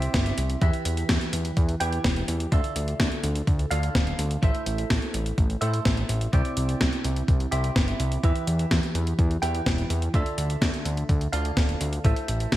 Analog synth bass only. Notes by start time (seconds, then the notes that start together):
0.14 G1
0.38 C2
0.62 E2
0.86 E2
1.09 E2
1.33 E2
1.57 E2
1.81 E2
2.05 E1
2.28 E2
2.52 D2
2.76 D2
3.00 D2
3.23 D2
3.47 D2
3.71 D2
3.95 D1
4.19 D2
4.43 A1
4.66 A1
4.90 A1
5.14 A1
5.38 A1
5.62 A2
5.86 A1
6.09 A1
6.33 C2
6.57 C2
6.81 C2
7.05 C2
7.28 C2
7.52 C2
7.76 G1
8.00 C2
8.24 E2
8.47 E2
8.71 E2
8.95 E2
9.19 E2
9.43 E2
9.66 E1
9.90 E2
10.14 D2
10.38 D2
10.62 D2
10.85 D2
11.09 D2
11.33 D2
11.57 D1
11.81 D2
12.05 A1
12.28 A1
12.52 A1